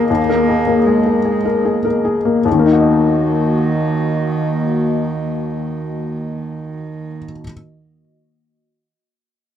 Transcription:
Already playing: A#3 G#4 A#4 D#5
0.10 D#2 A#3
0.30 A#4
0.49 G#4
0.67 A#3
0.84 G#3 G#4
1.06 A#4
1.25 G#4
1.45 A#4
1.65 G#4
1.85 A#4
2.05 G#4
2.25 A#3
2.45 D#2 D#3 A#3 F#4 D#5
2.52 D#3
2.59 A#3
2.66 D#4
2.73 F#4
2.80 D#5

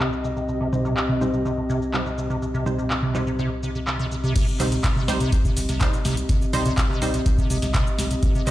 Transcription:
Already playing: C2 C4 G4 D#5
0.00 C3, clap, shaker
0.13 shaker
0.24 C3, shaker
0.37 C3, shaker
0.49 C3, shaker
0.61 C3
0.73 C3 G3 D#4 C5, mid tom, shaker
0.85 C3, shaker
0.97 clap, shaker
1.09 C3, mid tom
1.21 C3 G3 D#4 C5, shaker
1.33 C3, shaker
1.45 C3, shaker
1.58 C3
1.69 C3, shaker
1.82 shaker
1.94 C3 G3 D#4 C5, clap, shaker
2.06 C3, shaker
2.18 C3, shaker
2.30 C3, shaker
2.42 C3, shaker
2.54 C3, shaker
2.66 G3 D#4 C5, mid tom, shaker
2.78 C3, shaker
2.90 C3, clap, shaker
3.03 C3, mid tom
3.15 C3 G3 D#4 C5, clap, shaker
3.27 C3, shaker
3.39 C3, shaker
3.63 C3, shaker
3.75 C3, shaker
3.87 C3, clap, shaker
3.99 C3, shaker
4.11 C3, shaker
4.24 C3, shaker
4.36 C4 G4 D#5, kick, closed hi-hat, crash, shaker
4.48 shaker
4.60 C2 C3 G3 D#4 C5, clap, mid tom, open hi-hat, shaker
4.72 C3, closed hi-hat, shaker
4.84 C3, kick, clap, closed hi-hat, shaker
4.96 C3, mid tom
5.08 C2 C3 G3 D#4 C5, snare, open hi-hat, shaker
5.20 C3, closed hi-hat, shaker
5.32 kick, closed hi-hat, shaker
5.45 C3, kick, shaker
5.57 C2 C3, open hi-hat, shaker
5.69 C2 C3, snare, closed hi-hat, shaker
5.81 C3 G3 D#4 C5, kick, clap, closed hi-hat, shaker
5.93 C3, shaker
6.05 C2 C3, snare, open hi-hat, shaker
6.17 closed hi-hat, shaker
6.29 C3, kick, closed hi-hat, shaker
6.41 C3, shaker
6.53 C2 C3 G3 D#4 C5, mid tom, open hi-hat, shaker
6.66 C3, closed hi-hat, shaker
6.78 C3, kick, clap, closed hi-hat, shaker
6.90 C3, mid tom
7.02 C2 G3 D#4 C5, open hi-hat, shaker
7.14 C3, closed hi-hat, shaker
7.26 C3, kick, closed hi-hat, shaker
7.38 C3, kick, shaker
7.50 C2 C3, open hi-hat, shaker
7.62 C2 C3, snare, closed hi-hat, shaker
7.74 C3, kick, clap, closed hi-hat, shaker
7.87 shaker
7.99 C2 C3, snare, open hi-hat, shaker
8.11 C3, closed hi-hat, shaker
8.23 C3, kick, closed hi-hat, shaker
8.35 C3, shaker
8.47 C2 C3 G3 D#4 C5, clap, mid tom, open hi-hat, shaker

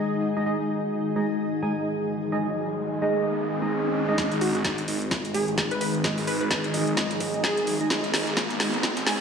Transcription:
Already playing: G#3 D#4 G#4 D#5 F#5
0.37 G#3 D#4 G#4 D#5
0.46 G#3 D#4 G#4 D#5, riser
1.16 G#3 D#4 G#4 D#5
1.62 G#3 D#4 G#4 G#5
2.32 G#3 D#4 G#4 D#5
3.02 G#3 D#4 G#4 D#5
3.62 G#3 D#4 G#4 D#5
4.09 G#3 D#4 G#4 D#5
4.18 G#1 G#3 D#4 G#4, kick, snare, closed hi-hat, riser
4.32 G#1, snare, closed hi-hat
4.41 F#4 G#4, closed hi-hat, open hi-hat
4.55 F#4, snare, closed hi-hat
4.65 G#1, kick, snare, closed hi-hat
4.78 closed hi-hat
4.88 G#1 G#3 D#4 G#4 D#5, closed hi-hat, open hi-hat
5.02 closed hi-hat
5.11 kick, snare, closed hi-hat
5.25 G#1, closed hi-hat
5.34 G#3 D#4 G#4 G#5, closed hi-hat, open hi-hat
5.48 A1, closed hi-hat
5.58 kick, snare, closed hi-hat
5.71 G#1 B4, closed hi-hat
5.81 B4, closed hi-hat, open hi-hat
5.95 closed hi-hat
6.04 G#3 D#4 G#4 D#5, kick, snare, closed hi-hat
6.18 G#1, snare, open hi-hat
6.27 B4, closed hi-hat, open hi-hat
6.41 B4, closed hi-hat
6.51 G#1, kick, snare, closed hi-hat
6.64 closed hi-hat
6.74 G#3 D#4 G#4 D#5, closed hi-hat, open hi-hat
6.87 G#1, closed hi-hat
6.97 kick, snare, closed hi-hat
7.11 snare, closed hi-hat
7.20 G#1, kick, snare, closed hi-hat, open hi-hat
7.34 G#3 D#4 G#4 D#5, closed hi-hat
7.44 G#1 G#4, kick, snare, closed hi-hat
7.57 G#1, closed hi-hat
7.67 closed hi-hat, open hi-hat
7.81 G#3 D#4 G#4 D#5, closed hi-hat
7.90 G#1 G#3 D#4 G#4 D#5, kick, snare, closed hi-hat
8.04 G#1, snare, closed hi-hat
8.14 snare, closed hi-hat, open hi-hat
8.27 snare, closed hi-hat
8.37 G#1, kick, snare, closed hi-hat
8.50 closed hi-hat
8.60 G#1 G#3 D#4 G#4 D#5, snare, closed hi-hat, open hi-hat
8.74 closed hi-hat
8.83 kick, snare, closed hi-hat
8.97 G#1, snare, closed hi-hat
9.07 G#3 D#4 G#4 G#5, snare, open hi-hat

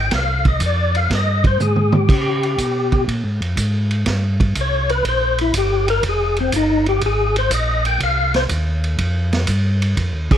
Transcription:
Already playing: G#1
0.00 G5
0.11 C2 F5, kick, snare, ride
0.45 D#5, kick, ride
0.60 F2, kick, hi-hat pedal, ride
0.66 D5
0.95 F5, ride
1.10 G2, kick, snare, ride
1.15 D#5
1.44 C5, kick, ride
1.60 G#2 G#4, hi-hat pedal, mid tom
1.76 mid tom
1.92 G4, mid tom
2.08 C#3, kick, crash
2.43 ride
2.58 B2, kick, hi-hat pedal, ride
2.92 kick, ride
3.08 A#2, kick, ride
3.24 G#2
3.40 F2, ride
3.57 G#2, kick, hi-hat pedal, ride
3.91 ride
4.06 G2, kick, snare, ride
4.40 kick, ride
4.55 C2, kick, hi-hat pedal, ride
4.61 C#5
4.89 B4, ride
5.05 A#1 C5, kick, ride
5.38 E4, ride
5.54 G1 G4, kick, hi-hat pedal, ride
5.88 A#4, ride
6.03 F1, kick, ride
6.09 G#4
6.36 C4, ride
6.52 G1 D#4, kick, hi-hat pedal, ride
6.86 G4, ride
7.01 G#1, kick, ride
7.06 G#4
7.36 C5, ride
7.50 A#1 D#5, kick, hi-hat pedal, ride
7.85 G5, ride
8.00 C2 F5, kick, ride
8.34 C5, snare, ride
8.49 D#2, kick, hi-hat pedal, ride
8.84 ride
8.98 F2, kick, ride
9.33 snare, ride
9.47 G2, kick, hi-hat pedal, ride
9.82 ride
9.97 F2, kick, ride
10.13 D#2
10.30 C2 G#4, kick, crash

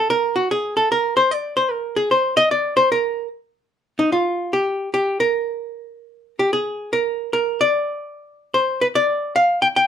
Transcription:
0.10 A#4
0.36 F#4
0.51 G#4
0.77 A4
0.92 A#4
1.17 C5
1.31 D5
1.57 C5
1.71 A#4
1.96 G#4
2.11 C5
2.37 D#5
2.51 D5
2.77 C5
2.92 A#4
3.99 D#4
4.12 F4
4.53 G4
4.94 G4
5.20 A#4
6.39 G4
6.53 G#4
6.93 A#4
7.33 A#4
7.61 D5
8.54 C5
8.81 B4
8.95 D5
9.36 F5
9.62 G5
9.76 G5

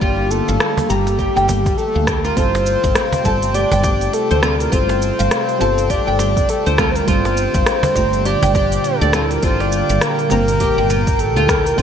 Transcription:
Already playing: D3 G3 A#3 F4 G4
0.01 G1 F4 G4, kick, shaker
0.31 A4, shaker
0.48 G1 F5, shaker
0.60 cross-stick, shaker
0.78 cajon bass
0.89 G1 G4 A#5, shaker
1.07 cajon slap, shaker
1.19 G4, kick, shaker
1.36 G1 G5, cajon slap
1.48 G4, cajon bass, shaker
1.66 kick, cajon slap, shaker
1.77 A4, shaker
1.95 D2 F5
2.07 G4, kick, cross-stick, shaker
2.24 F4 A#4, cajon slap, shaker
2.35 G1 C3 G3 A3 C4 F4 G4 A4 C5 G5, kick, open hi-hat, shaker
2.55 cajon slap
2.66 shaker
2.84 G1 F5, kick, open hi-hat, shaker
2.95 cross-stick, open hi-hat, shaker
3.12 cajon bass, open hi-hat
3.23 G1 G3 C4 F4 A5, kick, cajon slap, shaker
3.27 A4
3.42 open hi-hat, shaker
3.54 G4 D5, open hi-hat, shaker
3.72 G1 G5, cajon bass
3.83 G4, kick, cajon slap, shaker
4.01 open hi-hat, shaker
4.13 A4, open hi-hat, shaker
4.31 D2 C5, open hi-hat
4.42 G3 C4 F4 A4, cross-stick, shaker
4.60 A#4, open hi-hat, shaker
4.70 G1 G3 C4 F4 A4 C5, kick, open hi-hat, shaker
4.74 A4
4.89 cajon slap
5.02 shaker
5.19 G1 F5, open hi-hat, shaker
5.31 cross-stick, open hi-hat, shaker
5.49 open hi-hat
5.58 G1 G3 C4 F4 A5, cajon slap, shaker
5.62 A4
5.78 open hi-hat, shaker
5.90 G4 D5, kick, open hi-hat, shaker
6.07 G1 G5
6.19 G4, cajon slap, shaker
6.37 kick, open hi-hat, shaker
6.49 A4, open hi-hat, shaker
6.66 D2 C5, open hi-hat
6.78 G3 C4 F4 A4, kick, cross-stick, shaker
6.91 C5
6.96 A#4, open hi-hat, shaker
7.06 G1 A#2 D3 G3 C4 F4 G4 A4 C5, kick, open hi-hat, shaker
7.25 cajon slap
7.37 shaker
7.54 G1 F5, kick, open hi-hat, shaker
7.66 cross-stick, open hi-hat, shaker
7.83 cajon bass, open hi-hat
7.94 G1 G3 C4 F4 A#5, kick, cajon slap, shaker
7.98 A3
8.13 open hi-hat, shaker
8.25 G4 D5, open hi-hat, shaker
8.43 G1 G5, cajon bass
8.55 G4, kick, cajon slap, shaker
8.72 open hi-hat, shaker
8.84 A4, open hi-hat, shaker
9.01 D2 D5, open hi-hat
9.13 G3 C4 F4 A4, cross-stick, shaker
9.31 A#4, open hi-hat, shaker
9.41 G1 G3 C4 F4 C5, kick, open hi-hat, shaker
9.45 A4
9.60 D5, cajon slap
9.72 shaker
9.89 G1 F5, open hi-hat, shaker
10.01 A#4, cross-stick, open hi-hat, shaker
10.19 open hi-hat
10.29 G1 G3 C4 F4 A#4 A#5, cajon slap, shaker
10.33 A#3
10.48 open hi-hat, shaker
10.60 G4, kick, open hi-hat, shaker
10.78 G1 G5
10.89 F4, cajon slap, shaker
11.07 kick, open hi-hat, shaker
11.19 A4, open hi-hat, shaker
11.36 D2 F4, open hi-hat
11.48 A#4, kick, cross-stick, shaker
11.66 A#4, open hi-hat, shaker
11.76 G1 C3 G3 A3 C4 F4 C5, kick, open hi-hat, shaker

